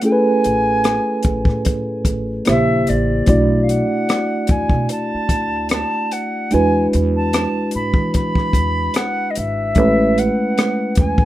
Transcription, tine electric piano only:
0.03 2.42 A3 medium
0.03 2.43 C#4 medium
0.03 2.43 E4 medium
0.03 2.43 G#4 medium
0.03 0.12 A4 soft
0.12 2.47 B4 medium
2.46 3.28 C#3 medium
2.46 3.27 A#3 medium
2.46 3.26 E4 medium
2.46 3.28 G4 medium
2.46 3.28 C5 medium
3.26 6.47 A3 medium
3.26 6.48 D4 medium
3.26 6.48 E4 medium
3.26 6.48 F#4 medium
3.26 6.49 D5 medium
6.51 9.72 G#3 medium
6.51 9.72 D4 medium
6.51 9.72 E4 medium
6.51 9.73 F#4 medium
6.51 9.73 B4 medium
9.76 11.25 G#3 medium
9.76 11.25 A3 medium
9.76 11.25 C#4 medium
9.76 11.25 E4 medium
9.76 11.25 B4 medium

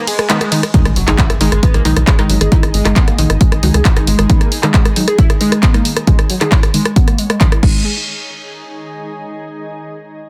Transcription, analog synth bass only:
0.85 0.93 G#1 medium
0.96 1.04 F#1 loud
1.08 1.15 G#1 medium
1.30 1.38 G#1 medium
1.41 1.49 G#1 loud
1.52 1.60 G#1 medium
1.74 1.82 B1 medium
1.85 1.93 B1 loud
1.97 2.04 B1 medium
2.19 2.27 G#1 medium
2.30 2.38 G#1 loud
2.41 2.49 G#1 medium
2.63 2.71 G#1 medium
2.74 2.82 G#1 loud
2.85 2.93 G#1 medium
3.08 3.15 G#1 medium
3.18 3.27 A#1 loud
3.30 3.38 G#1 medium
3.52 3.60 G#1 medium
3.63 3.71 C#2 loud
3.74 3.82 C#2 medium
3.97 4.04 G#1 medium
4.07 4.16 G#1 loud
4.19 4.27 G#1 medium
7.63 7.84 G#1 loud

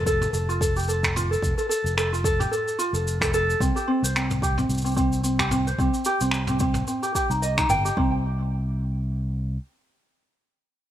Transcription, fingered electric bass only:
0.00 0.27 F1 medium
0.33 1.36 F1 medium
1.42 1.53 F1 loud
1.84 2.45 F1 medium
2.93 3.54 F1 medium
3.60 3.71 C2 loud
4.03 4.63 C2 medium
4.69 5.72 C2 loud
5.78 5.89 C2 loud
6.21 6.81 C2 medium
7.30 7.63 C2 medium
7.69 7.89 G1 loud
7.97 9.57 C2 loud

